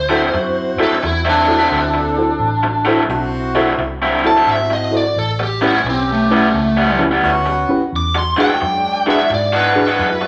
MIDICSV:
0, 0, Header, 1, 8, 480
1, 0, Start_track
1, 0, Tempo, 688863
1, 1677, Time_signature, 4, 2, 24, 8
1, 7160, End_track
2, 0, Start_track
2, 0, Title_t, "Lead electric guitar"
2, 0, Program_c, 0, 29
2, 0, Note_on_c, 0, 72, 100
2, 546, Note_off_c, 0, 72, 0
2, 575, Note_on_c, 0, 69, 82
2, 722, Note_off_c, 0, 69, 0
2, 737, Note_on_c, 0, 64, 77
2, 882, Note_off_c, 0, 64, 0
2, 899, Note_on_c, 0, 62, 88
2, 2300, Note_off_c, 0, 62, 0
2, 2974, Note_on_c, 0, 81, 93
2, 3121, Note_off_c, 0, 81, 0
2, 3143, Note_on_c, 0, 76, 84
2, 3286, Note_off_c, 0, 76, 0
2, 3297, Note_on_c, 0, 75, 74
2, 3443, Note_off_c, 0, 75, 0
2, 3461, Note_on_c, 0, 74, 85
2, 3605, Note_off_c, 0, 74, 0
2, 3613, Note_on_c, 0, 69, 99
2, 3761, Note_off_c, 0, 69, 0
2, 3783, Note_on_c, 0, 67, 92
2, 3926, Note_off_c, 0, 67, 0
2, 3950, Note_on_c, 0, 64, 88
2, 4090, Note_off_c, 0, 64, 0
2, 4107, Note_on_c, 0, 60, 93
2, 4248, Note_off_c, 0, 60, 0
2, 4265, Note_on_c, 0, 57, 89
2, 4407, Note_off_c, 0, 57, 0
2, 4427, Note_on_c, 0, 57, 97
2, 4879, Note_off_c, 0, 57, 0
2, 5547, Note_on_c, 0, 86, 94
2, 5689, Note_off_c, 0, 86, 0
2, 5704, Note_on_c, 0, 84, 77
2, 5847, Note_off_c, 0, 84, 0
2, 5853, Note_on_c, 0, 79, 90
2, 6312, Note_off_c, 0, 79, 0
2, 6341, Note_on_c, 0, 76, 82
2, 6486, Note_off_c, 0, 76, 0
2, 6507, Note_on_c, 0, 74, 90
2, 6649, Note_off_c, 0, 74, 0
2, 6660, Note_on_c, 0, 71, 100
2, 7160, Note_off_c, 0, 71, 0
2, 7160, End_track
3, 0, Start_track
3, 0, Title_t, "Reed electric piano"
3, 0, Program_c, 1, 4
3, 67, Note_on_c, 1, 64, 70
3, 73, Note_on_c, 1, 66, 67
3, 75, Note_on_c, 1, 69, 65
3, 80, Note_on_c, 1, 72, 79
3, 153, Note_off_c, 1, 64, 0
3, 155, Note_off_c, 1, 66, 0
3, 157, Note_off_c, 1, 69, 0
3, 159, Note_off_c, 1, 72, 0
3, 557, Note_on_c, 1, 64, 69
3, 558, Note_on_c, 1, 66, 71
3, 559, Note_on_c, 1, 69, 67
3, 562, Note_on_c, 1, 72, 80
3, 637, Note_off_c, 1, 64, 0
3, 638, Note_off_c, 1, 66, 0
3, 638, Note_off_c, 1, 69, 0
3, 640, Note_off_c, 1, 72, 0
3, 1024, Note_on_c, 1, 64, 72
3, 1028, Note_on_c, 1, 69, 65
3, 1030, Note_on_c, 1, 66, 67
3, 1038, Note_on_c, 1, 72, 75
3, 1111, Note_off_c, 1, 64, 0
3, 1113, Note_off_c, 1, 69, 0
3, 1114, Note_off_c, 1, 66, 0
3, 1117, Note_off_c, 1, 72, 0
3, 1514, Note_on_c, 1, 64, 64
3, 1520, Note_on_c, 1, 66, 56
3, 1521, Note_on_c, 1, 69, 57
3, 1524, Note_on_c, 1, 72, 65
3, 1596, Note_off_c, 1, 64, 0
3, 1598, Note_off_c, 1, 66, 0
3, 1599, Note_off_c, 1, 69, 0
3, 1600, Note_off_c, 1, 72, 0
3, 1999, Note_on_c, 1, 64, 88
3, 2001, Note_on_c, 1, 66, 80
3, 2003, Note_on_c, 1, 69, 80
3, 2006, Note_on_c, 1, 72, 93
3, 2078, Note_off_c, 1, 64, 0
3, 2079, Note_off_c, 1, 66, 0
3, 2080, Note_off_c, 1, 69, 0
3, 2081, Note_off_c, 1, 72, 0
3, 2474, Note_on_c, 1, 64, 85
3, 2476, Note_on_c, 1, 66, 90
3, 2481, Note_on_c, 1, 69, 78
3, 2486, Note_on_c, 1, 72, 93
3, 2555, Note_off_c, 1, 64, 0
3, 2557, Note_off_c, 1, 66, 0
3, 2559, Note_off_c, 1, 69, 0
3, 2562, Note_off_c, 1, 72, 0
3, 2958, Note_on_c, 1, 64, 78
3, 2962, Note_on_c, 1, 66, 69
3, 2964, Note_on_c, 1, 69, 68
3, 2971, Note_on_c, 1, 72, 85
3, 3038, Note_off_c, 1, 64, 0
3, 3040, Note_off_c, 1, 66, 0
3, 3041, Note_off_c, 1, 69, 0
3, 3044, Note_off_c, 1, 72, 0
3, 3423, Note_on_c, 1, 64, 73
3, 3429, Note_on_c, 1, 66, 61
3, 3431, Note_on_c, 1, 69, 54
3, 3437, Note_on_c, 1, 72, 72
3, 3510, Note_off_c, 1, 64, 0
3, 3513, Note_off_c, 1, 66, 0
3, 3514, Note_off_c, 1, 69, 0
3, 3517, Note_off_c, 1, 72, 0
3, 3915, Note_on_c, 1, 64, 70
3, 3917, Note_on_c, 1, 61, 77
3, 3923, Note_on_c, 1, 67, 71
3, 3924, Note_on_c, 1, 71, 85
3, 3997, Note_off_c, 1, 61, 0
3, 3997, Note_off_c, 1, 64, 0
3, 4000, Note_off_c, 1, 67, 0
3, 4001, Note_off_c, 1, 71, 0
3, 4395, Note_on_c, 1, 64, 71
3, 4398, Note_on_c, 1, 61, 75
3, 4400, Note_on_c, 1, 71, 84
3, 4401, Note_on_c, 1, 67, 64
3, 4477, Note_off_c, 1, 64, 0
3, 4478, Note_off_c, 1, 61, 0
3, 4479, Note_off_c, 1, 71, 0
3, 4480, Note_off_c, 1, 67, 0
3, 4869, Note_on_c, 1, 61, 78
3, 4876, Note_on_c, 1, 64, 70
3, 4876, Note_on_c, 1, 67, 67
3, 4883, Note_on_c, 1, 71, 79
3, 4954, Note_off_c, 1, 61, 0
3, 4957, Note_off_c, 1, 67, 0
3, 4958, Note_off_c, 1, 64, 0
3, 4961, Note_off_c, 1, 71, 0
3, 5359, Note_on_c, 1, 61, 84
3, 5360, Note_on_c, 1, 64, 68
3, 5363, Note_on_c, 1, 67, 65
3, 5366, Note_on_c, 1, 71, 86
3, 5439, Note_off_c, 1, 61, 0
3, 5439, Note_off_c, 1, 64, 0
3, 5441, Note_off_c, 1, 67, 0
3, 5443, Note_off_c, 1, 71, 0
3, 5837, Note_on_c, 1, 62, 77
3, 5841, Note_on_c, 1, 66, 65
3, 5846, Note_on_c, 1, 68, 71
3, 5852, Note_on_c, 1, 71, 73
3, 5918, Note_off_c, 1, 62, 0
3, 5920, Note_off_c, 1, 66, 0
3, 5923, Note_off_c, 1, 68, 0
3, 5926, Note_off_c, 1, 71, 0
3, 6321, Note_on_c, 1, 62, 75
3, 6325, Note_on_c, 1, 66, 69
3, 6325, Note_on_c, 1, 68, 63
3, 6331, Note_on_c, 1, 71, 83
3, 6400, Note_off_c, 1, 62, 0
3, 6402, Note_off_c, 1, 66, 0
3, 6402, Note_off_c, 1, 68, 0
3, 6405, Note_off_c, 1, 71, 0
3, 6798, Note_on_c, 1, 62, 67
3, 6800, Note_on_c, 1, 66, 65
3, 6800, Note_on_c, 1, 68, 64
3, 6805, Note_on_c, 1, 71, 78
3, 6879, Note_off_c, 1, 62, 0
3, 6880, Note_off_c, 1, 66, 0
3, 6880, Note_off_c, 1, 68, 0
3, 6883, Note_off_c, 1, 71, 0
3, 7160, End_track
4, 0, Start_track
4, 0, Title_t, "Horn section"
4, 0, Program_c, 2, 61
4, 235, Note_on_c, 2, 60, 81
4, 241, Note_on_c, 2, 64, 88
4, 242, Note_on_c, 2, 66, 96
4, 842, Note_off_c, 2, 60, 0
4, 845, Note_off_c, 2, 64, 0
4, 846, Note_off_c, 2, 66, 0
4, 1191, Note_on_c, 2, 60, 84
4, 1194, Note_on_c, 2, 64, 71
4, 1197, Note_on_c, 2, 69, 93
4, 1800, Note_off_c, 2, 60, 0
4, 1802, Note_off_c, 2, 64, 0
4, 1803, Note_off_c, 2, 69, 0
4, 2150, Note_on_c, 2, 60, 88
4, 2153, Note_on_c, 2, 64, 86
4, 2156, Note_on_c, 2, 66, 104
4, 2760, Note_off_c, 2, 60, 0
4, 2761, Note_off_c, 2, 64, 0
4, 2763, Note_off_c, 2, 66, 0
4, 3113, Note_on_c, 2, 60, 82
4, 3118, Note_on_c, 2, 64, 75
4, 3122, Note_on_c, 2, 66, 86
4, 3595, Note_off_c, 2, 60, 0
4, 3598, Note_off_c, 2, 64, 0
4, 3600, Note_off_c, 2, 66, 0
4, 4075, Note_on_c, 2, 59, 77
4, 4080, Note_on_c, 2, 61, 71
4, 4081, Note_on_c, 2, 67, 92
4, 4683, Note_off_c, 2, 59, 0
4, 4685, Note_off_c, 2, 61, 0
4, 4686, Note_off_c, 2, 67, 0
4, 5036, Note_on_c, 2, 59, 106
4, 5041, Note_on_c, 2, 61, 83
4, 5044, Note_on_c, 2, 66, 113
4, 5518, Note_off_c, 2, 59, 0
4, 5520, Note_off_c, 2, 61, 0
4, 5522, Note_off_c, 2, 66, 0
4, 5992, Note_on_c, 2, 56, 75
4, 5996, Note_on_c, 2, 62, 70
4, 6001, Note_on_c, 2, 54, 92
4, 6602, Note_off_c, 2, 56, 0
4, 6604, Note_off_c, 2, 62, 0
4, 6606, Note_off_c, 2, 54, 0
4, 6960, Note_on_c, 2, 56, 77
4, 6963, Note_on_c, 2, 62, 67
4, 6965, Note_on_c, 2, 64, 81
4, 7160, Note_off_c, 2, 56, 0
4, 7160, Note_off_c, 2, 62, 0
4, 7160, Note_off_c, 2, 64, 0
4, 7160, End_track
5, 0, Start_track
5, 0, Title_t, "Overdriven electric guitar"
5, 0, Program_c, 3, 29
5, 63, Note_on_c, 3, 50, 94
5, 67, Note_on_c, 3, 54, 81
5, 73, Note_on_c, 3, 60, 93
5, 74, Note_on_c, 3, 64, 101
5, 175, Note_off_c, 3, 50, 0
5, 177, Note_off_c, 3, 54, 0
5, 180, Note_off_c, 3, 60, 0
5, 181, Note_off_c, 3, 64, 0
5, 549, Note_on_c, 3, 50, 74
5, 553, Note_on_c, 3, 54, 77
5, 553, Note_on_c, 3, 60, 74
5, 556, Note_on_c, 3, 64, 82
5, 658, Note_off_c, 3, 50, 0
5, 660, Note_off_c, 3, 54, 0
5, 660, Note_off_c, 3, 60, 0
5, 662, Note_off_c, 3, 64, 0
5, 870, Note_on_c, 3, 64, 84
5, 874, Note_on_c, 3, 60, 86
5, 876, Note_on_c, 3, 54, 80
5, 879, Note_on_c, 3, 50, 75
5, 1055, Note_off_c, 3, 64, 0
5, 1057, Note_off_c, 3, 60, 0
5, 1058, Note_off_c, 3, 54, 0
5, 1059, Note_off_c, 3, 50, 0
5, 1106, Note_on_c, 3, 64, 79
5, 1111, Note_on_c, 3, 60, 70
5, 1115, Note_on_c, 3, 54, 66
5, 1116, Note_on_c, 3, 50, 64
5, 1240, Note_off_c, 3, 64, 0
5, 1243, Note_off_c, 3, 60, 0
5, 1245, Note_off_c, 3, 50, 0
5, 1245, Note_off_c, 3, 54, 0
5, 1986, Note_on_c, 3, 50, 91
5, 1991, Note_on_c, 3, 54, 93
5, 1991, Note_on_c, 3, 60, 83
5, 1995, Note_on_c, 3, 64, 88
5, 2096, Note_off_c, 3, 50, 0
5, 2099, Note_off_c, 3, 54, 0
5, 2099, Note_off_c, 3, 60, 0
5, 2101, Note_off_c, 3, 64, 0
5, 2475, Note_on_c, 3, 50, 76
5, 2479, Note_on_c, 3, 54, 70
5, 2482, Note_on_c, 3, 60, 81
5, 2483, Note_on_c, 3, 64, 87
5, 2581, Note_off_c, 3, 50, 0
5, 2583, Note_off_c, 3, 54, 0
5, 2584, Note_off_c, 3, 60, 0
5, 2585, Note_off_c, 3, 64, 0
5, 2801, Note_on_c, 3, 60, 84
5, 2802, Note_on_c, 3, 64, 97
5, 2807, Note_on_c, 3, 54, 86
5, 2810, Note_on_c, 3, 50, 78
5, 2980, Note_off_c, 3, 60, 0
5, 2980, Note_off_c, 3, 64, 0
5, 2983, Note_off_c, 3, 54, 0
5, 2985, Note_off_c, 3, 50, 0
5, 3043, Note_on_c, 3, 64, 78
5, 3045, Note_on_c, 3, 54, 68
5, 3045, Note_on_c, 3, 60, 79
5, 3048, Note_on_c, 3, 50, 67
5, 3169, Note_off_c, 3, 54, 0
5, 3169, Note_off_c, 3, 60, 0
5, 3169, Note_off_c, 3, 64, 0
5, 3171, Note_off_c, 3, 50, 0
5, 3911, Note_on_c, 3, 45, 101
5, 3916, Note_on_c, 3, 59, 95
5, 3917, Note_on_c, 3, 55, 82
5, 3922, Note_on_c, 3, 61, 101
5, 4019, Note_off_c, 3, 45, 0
5, 4022, Note_off_c, 3, 55, 0
5, 4022, Note_off_c, 3, 59, 0
5, 4025, Note_off_c, 3, 61, 0
5, 4400, Note_on_c, 3, 45, 72
5, 4404, Note_on_c, 3, 55, 78
5, 4406, Note_on_c, 3, 59, 82
5, 4408, Note_on_c, 3, 61, 77
5, 4504, Note_off_c, 3, 45, 0
5, 4506, Note_off_c, 3, 55, 0
5, 4507, Note_off_c, 3, 59, 0
5, 4508, Note_off_c, 3, 61, 0
5, 4717, Note_on_c, 3, 61, 91
5, 4719, Note_on_c, 3, 59, 79
5, 4722, Note_on_c, 3, 55, 83
5, 4724, Note_on_c, 3, 45, 78
5, 4899, Note_off_c, 3, 61, 0
5, 4900, Note_off_c, 3, 59, 0
5, 4901, Note_off_c, 3, 55, 0
5, 4902, Note_off_c, 3, 45, 0
5, 4954, Note_on_c, 3, 59, 73
5, 4955, Note_on_c, 3, 61, 76
5, 4959, Note_on_c, 3, 55, 72
5, 4962, Note_on_c, 3, 45, 64
5, 5085, Note_off_c, 3, 59, 0
5, 5085, Note_off_c, 3, 61, 0
5, 5088, Note_off_c, 3, 55, 0
5, 5089, Note_off_c, 3, 45, 0
5, 5830, Note_on_c, 3, 52, 89
5, 5833, Note_on_c, 3, 56, 93
5, 5835, Note_on_c, 3, 62, 92
5, 5838, Note_on_c, 3, 66, 103
5, 5939, Note_off_c, 3, 52, 0
5, 5941, Note_off_c, 3, 56, 0
5, 5942, Note_off_c, 3, 62, 0
5, 5944, Note_off_c, 3, 66, 0
5, 6316, Note_on_c, 3, 52, 75
5, 6318, Note_on_c, 3, 56, 77
5, 6320, Note_on_c, 3, 62, 81
5, 6323, Note_on_c, 3, 66, 82
5, 6422, Note_off_c, 3, 52, 0
5, 6424, Note_off_c, 3, 56, 0
5, 6424, Note_off_c, 3, 62, 0
5, 6426, Note_off_c, 3, 66, 0
5, 6638, Note_on_c, 3, 66, 87
5, 6642, Note_on_c, 3, 56, 79
5, 6642, Note_on_c, 3, 62, 88
5, 6646, Note_on_c, 3, 52, 64
5, 6820, Note_off_c, 3, 66, 0
5, 6822, Note_off_c, 3, 56, 0
5, 6822, Note_off_c, 3, 62, 0
5, 6824, Note_off_c, 3, 52, 0
5, 6877, Note_on_c, 3, 62, 74
5, 6877, Note_on_c, 3, 66, 77
5, 6882, Note_on_c, 3, 56, 69
5, 6886, Note_on_c, 3, 52, 60
5, 7007, Note_off_c, 3, 62, 0
5, 7007, Note_off_c, 3, 66, 0
5, 7010, Note_off_c, 3, 56, 0
5, 7012, Note_off_c, 3, 52, 0
5, 7160, End_track
6, 0, Start_track
6, 0, Title_t, "Fingered electric bass"
6, 0, Program_c, 4, 33
6, 0, Note_on_c, 4, 38, 79
6, 223, Note_off_c, 4, 38, 0
6, 235, Note_on_c, 4, 42, 86
6, 529, Note_off_c, 4, 42, 0
6, 718, Note_on_c, 4, 40, 84
6, 1183, Note_off_c, 4, 40, 0
6, 1194, Note_on_c, 4, 38, 83
6, 1661, Note_off_c, 4, 38, 0
6, 1668, Note_on_c, 4, 33, 81
6, 2138, Note_off_c, 4, 33, 0
6, 2152, Note_on_c, 4, 35, 96
6, 2620, Note_off_c, 4, 35, 0
6, 2631, Note_on_c, 4, 36, 80
6, 3100, Note_off_c, 4, 36, 0
6, 3115, Note_on_c, 4, 32, 93
6, 3582, Note_off_c, 4, 32, 0
6, 3596, Note_on_c, 4, 33, 85
6, 4063, Note_off_c, 4, 33, 0
6, 4071, Note_on_c, 4, 35, 94
6, 4540, Note_off_c, 4, 35, 0
6, 4555, Note_on_c, 4, 37, 84
6, 5022, Note_off_c, 4, 37, 0
6, 5040, Note_on_c, 4, 38, 88
6, 5332, Note_off_c, 4, 38, 0
6, 5522, Note_on_c, 4, 40, 83
6, 5814, Note_off_c, 4, 40, 0
6, 6004, Note_on_c, 4, 42, 82
6, 6467, Note_off_c, 4, 42, 0
6, 6480, Note_on_c, 4, 44, 92
6, 6946, Note_off_c, 4, 44, 0
6, 6961, Note_on_c, 4, 42, 86
6, 7160, Note_off_c, 4, 42, 0
6, 7160, End_track
7, 0, Start_track
7, 0, Title_t, "Muted fingered electric bass strokes"
7, 551, Note_on_c, 9, 29, 40
7, 621, Note_off_c, 9, 29, 0
7, 5357, Note_on_c, 9, 29, 38
7, 5427, Note_off_c, 9, 29, 0
7, 5840, Note_on_c, 9, 29, 42
7, 5910, Note_off_c, 9, 29, 0
7, 7160, End_track
8, 0, Start_track
8, 0, Title_t, "Muted overdriven electric guitar strokes"
8, 236, Note_on_c, 9, 29, 49
8, 306, Note_off_c, 9, 29, 0
8, 716, Note_on_c, 9, 29, 44
8, 786, Note_off_c, 9, 29, 0
8, 1352, Note_on_c, 9, 29, 55
8, 1421, Note_off_c, 9, 29, 0
8, 1833, Note_on_c, 9, 29, 47
8, 1903, Note_off_c, 9, 29, 0
8, 2160, Note_on_c, 9, 29, 51
8, 2229, Note_off_c, 9, 29, 0
8, 2641, Note_on_c, 9, 29, 44
8, 2710, Note_off_c, 9, 29, 0
8, 3277, Note_on_c, 9, 29, 44
8, 3347, Note_off_c, 9, 29, 0
8, 3760, Note_on_c, 9, 29, 52
8, 3829, Note_off_c, 9, 29, 0
8, 4085, Note_on_c, 9, 29, 47
8, 4154, Note_off_c, 9, 29, 0
8, 4564, Note_on_c, 9, 29, 50
8, 4633, Note_off_c, 9, 29, 0
8, 5198, Note_on_c, 9, 29, 51
8, 5267, Note_off_c, 9, 29, 0
8, 5677, Note_on_c, 9, 29, 52
8, 5747, Note_off_c, 9, 29, 0
8, 5999, Note_on_c, 9, 29, 49
8, 6068, Note_off_c, 9, 29, 0
8, 6484, Note_on_c, 9, 29, 53
8, 6554, Note_off_c, 9, 29, 0
8, 7115, Note_on_c, 9, 29, 47
8, 7160, Note_off_c, 9, 29, 0
8, 7160, End_track
0, 0, End_of_file